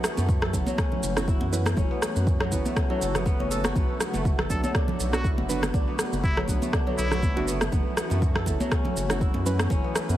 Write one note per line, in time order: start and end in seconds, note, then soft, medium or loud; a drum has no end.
0.00 3.72 E3 medium
0.00 7.69 F#3 medium
0.00 0.17 A3 medium
0.00 10.17 A3 medium
0.00 1.75 C#4 medium
0.00 0.48 D4 medium
0.00 0.65 F#4 loud
0.00 7.68 F#4 medium
0.00 cross-stick loud
0.04 1.90 B3 medium
0.04 shaker loud
0.17 0.55 F#2 medium
0.17 2.17 A3 medium
0.17 muted conga soft
0.17 high conga medium
0.17 shaker medium
0.29 kick loud
0.29 shaker soft
0.42 1.74 A4 medium
0.42 cross-stick medium
0.42 low conga medium
0.53 0.65 F#1 loud
0.53 0.68 F#3 medium
0.53 0.68 C#4 medium
0.53 0.68 E4 medium
0.53 0.68 A4 medium
0.53 kick medium
0.53 muted conga medium
0.53 shaker loud
0.67 2.39 F#3 medium
0.67 high conga loud
0.67 shaker medium
0.78 1.77 C#4 medium
0.78 kick loud
0.78 cross-stick loud
0.78 shaker soft
0.92 muted conga soft
0.92 low conga loud
1.03 1.38 F#1 medium
1.03 shaker loud
1.16 1.38 F#3 medium
1.16 1.38 C#4 medium
1.16 1.38 E4 medium
1.16 2.63 F#4 loud
1.16 1.38 A4 medium
1.16 cross-stick medium
1.16 high conga medium
1.16 shaker medium
1.28 2.85 E4 medium
1.28 kick loud
1.28 shaker soft
1.41 1.74 F#2 medium
1.41 muted conga medium
1.41 high conga loud
1.52 1.67 F#3 loud
1.52 1.67 C#4 loud
1.52 1.67 E4 medium
1.52 1.67 B4 loud
1.52 shaker loud
1.66 cross-stick loud
1.66 high conga medium
1.66 shaker medium
1.77 1.89 F#1 loud
1.77 7.69 B3 medium
1.77 2.76 C#4 medium
1.77 kick loud
1.77 muted conga soft
1.77 low conga loud
1.77 shaker soft
1.91 2.51 B3 medium
2.02 cross-stick medium
2.02 shaker loud
2.16 2.53 F#2 medium
2.16 muted conga soft
2.16 shaker medium
2.27 kick loud
2.27 shaker soft
2.40 2.89 F#3 medium
2.40 cross-stick medium
2.40 low conga medium
2.52 2.63 F#1 loud
2.52 2.87 F#3 medium
2.52 3.14 B3 medium
2.52 2.87 C#4 medium
2.52 2.87 E4 medium
2.52 2.87 B4 medium
2.52 kick medium
2.52 muted conga soft
2.52 shaker loud
2.65 4.14 A3 medium
2.65 high conga loud
2.65 shaker medium
2.76 3.39 C#4 medium
2.76 kick loud
2.76 cross-stick medium
2.76 shaker soft
2.90 3.81 F#3 medium
2.90 3.11 F#3 medium
2.90 3.11 C#4 medium
2.90 3.11 E4 medium
2.90 3.11 A4 medium
2.90 muted conga soft
3.01 3.36 F#1 medium
3.01 3.50 A4 medium
3.01 shaker loud
3.15 3.26 B3 loud
3.15 cross-stick medium
3.15 low conga medium
3.15 shaker medium
3.26 3.75 B3 loud
3.26 kick loud
3.26 high conga medium
3.26 shaker soft
3.40 3.73 F#1 loud
3.40 4.81 C#4 medium
3.40 muted conga medium
3.51 4.39 A4 loud
3.51 shaker loud
3.64 5.11 F#4 loud
3.64 cross-stick loud
3.64 high conga loud
3.64 shaker medium
3.76 3.87 B1 loud
3.76 7.69 D3 medium
3.76 4.00 B3 medium
3.76 kick loud
3.76 muted conga soft
3.76 low conga medium
3.76 shaker soft
4.00 5.87 B3 medium
4.00 cross-stick medium
4.00 shaker medium
4.14 4.52 F#1 medium
4.14 6.14 A3 medium
4.14 muted conga soft
4.14 high conga medium
4.14 shaker medium
4.25 kick loud
4.25 shaker soft
4.39 5.71 A4 medium
4.39 cross-stick medium
4.39 low conga medium
4.50 4.61 B1 loud
4.50 4.65 F#3 medium
4.50 4.65 B3 medium
4.50 4.65 D4 medium
4.50 4.65 A4 medium
4.50 4.59 A4 medium
4.50 kick medium
4.50 muted conga soft
4.50 shaker medium
4.63 6.36 F#3 medium
4.63 4.71 A4 medium
4.63 high conga loud
4.63 shaker medium
4.75 5.74 D4 medium
4.75 kick loud
4.75 cross-stick medium
4.75 shaker soft
4.88 muted conga soft
4.88 low conga loud
5.00 5.34 B1 medium
5.00 shaker loud
5.13 5.34 F#3 medium
5.13 5.34 B3 medium
5.13 5.34 D4 medium
5.13 6.59 F#4 loud
5.13 5.30 F#4 medium
5.13 5.34 A4 medium
5.13 cross-stick medium
5.13 high conga medium
5.13 shaker medium
5.24 6.81 E4 medium
5.24 kick loud
5.24 shaker soft
5.38 5.71 F#1 medium
5.38 muted conga soft
5.38 high conga loud
5.49 5.64 F#3 loud
5.49 5.64 B3 medium
5.49 5.64 D4 loud
5.49 5.64 B4 loud
5.49 shaker loud
5.63 cross-stick medium
5.63 high conga medium
5.63 shaker medium
5.74 5.85 B1 loud
5.74 6.73 D4 medium
5.74 kick loud
5.74 muted conga medium
5.74 low conga medium
5.74 shaker soft
5.88 6.48 B3 medium
5.99 7.22 B4 medium
5.99 cross-stick medium
5.99 shaker medium
6.12 6.50 F#1 medium
6.12 muted conga soft
6.12 shaker medium
6.24 6.41 E4 loud
6.24 kick loud
6.24 shaker soft
6.37 6.85 F#3 medium
6.37 cross-stick medium
6.37 low conga medium
6.48 6.60 B1 loud
6.48 6.84 F#3 medium
6.48 6.84 B3 medium
6.48 6.98 B3 medium
6.48 6.84 D4 medium
6.48 6.84 B4 medium
6.48 kick medium
6.48 muted conga soft
6.48 shaker medium
6.62 7.36 A3 medium
6.62 high conga loud
6.62 shaker medium
6.73 8.41 D4 medium
6.73 kick loud
6.73 cross-stick medium
6.73 shaker soft
6.87 7.77 F#3 medium
6.87 7.08 F#3 medium
6.87 7.08 B3 medium
6.87 7.08 D4 medium
6.87 7.08 A4 medium
6.87 muted conga soft
6.98 7.33 B1 medium
6.98 7.47 B3 medium
6.98 7.48 E4 loud
6.98 shaker medium
7.11 8.58 F#4 loud
7.11 cross-stick medium
7.11 low conga medium
7.11 shaker medium
7.23 kick loud
7.23 high conga medium
7.23 shaker soft
7.36 7.69 F#1 medium
7.36 7.49 F#3 loud
7.36 8.10 A3 medium
7.36 7.49 B3 loud
7.36 7.49 D4 loud
7.36 7.49 F#4 loud
7.36 muted conga medium
7.47 7.72 B3 medium
7.47 shaker loud
7.61 cross-stick medium
7.61 high conga medium
7.61 shaker medium
7.72 7.84 F#1 loud
7.72 10.17 E3 medium
7.72 10.17 F#3 medium
7.72 7.97 B3 medium
7.72 10.17 C#4 medium
7.72 9.69 F#4 medium
7.72 kick loud
7.72 muted conga medium
7.72 low conga medium
7.72 shaker soft
7.97 9.83 B3 medium
7.97 cross-stick medium
7.97 shaker medium
8.10 8.48 F#2 medium
8.10 10.10 A3 medium
8.10 muted conga soft
8.10 high conga medium
8.10 shaker medium
8.22 kick loud
8.22 shaker soft
8.35 9.67 A4 medium
8.35 cross-stick medium
8.35 low conga medium
8.46 8.58 F#1 loud
8.46 8.61 F#3 medium
8.46 8.61 C#4 medium
8.46 8.61 E4 medium
8.46 8.61 A4 medium
8.46 kick medium
8.46 muted conga medium
8.46 shaker medium
8.60 10.17 F#3 medium
8.60 high conga loud
8.60 shaker medium
8.72 9.70 C#4 medium
8.72 kick loud
8.72 cross-stick medium
8.72 shaker soft
8.85 muted conga soft
8.85 low conga loud
8.96 9.31 F#1 medium
8.96 shaker medium
9.10 9.31 F#3 medium
9.10 9.31 C#4 medium
9.10 9.31 E4 medium
9.10 10.17 F#4 loud
9.10 9.31 A4 medium
9.10 cross-stick medium
9.10 high conga medium
9.10 shaker soft
9.21 10.17 E4 medium
9.21 kick loud
9.21 shaker soft
9.34 9.68 F#2 medium
9.34 muted conga medium
9.34 high conga loud
9.46 9.60 F#3 loud
9.46 9.60 C#4 loud
9.46 9.60 E4 loud
9.46 9.60 B4 loud
9.46 shaker medium
9.59 cross-stick loud
9.59 high conga medium
9.59 shaker medium
9.70 9.82 F#1 loud
9.70 10.17 C#4 medium
9.70 10.17 E4 medium
9.70 kick loud
9.70 muted conga medium
9.70 low conga medium
9.70 shaker soft
9.84 10.17 B3 medium
9.95 10.17 B4 medium
9.95 cross-stick loud
9.95 shaker medium
10.09 10.17 F#2 medium
10.09 muted conga soft
10.09 high conga medium
10.09 shaker medium